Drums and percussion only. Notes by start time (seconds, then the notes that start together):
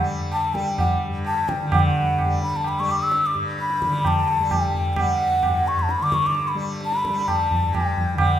0.32 tabla na
0.55 tabla ke
0.78 tabla na, tabla ge
1.25 tabla na
1.49 tabla ke
1.72 tabla na, tabla ge
2.19 tabla na, tabla ge
2.42 tabla te
2.54 tabla ge
2.64 tabla na
2.89 tabla na
3.12 tabla te
3.35 tabla te
3.59 tabla te
3.70 tabla te
3.82 tabla ke
3.93 tabla te
4.05 tabla na, tabla ge
4.28 tabla te
4.51 tabla na, tabla ge
4.74 tabla ge
4.96 tabla na, tabla ge
5.43 tabla na, tabla ge
5.66 tabla te
5.77 tabla ge
5.89 tabla te
6.00 tabla te
6.12 tabla ke
6.23 tabla te
6.35 tabla te
6.57 tabla te
6.81 tabla te
6.92 tabla te
7.05 tabla ke
7.16 tabla te
7.28 tabla na, tabla ge
7.51 tabla ge
7.75 tabla na, tabla ge
7.97 tabla ge
8.18 tabla na, tabla ge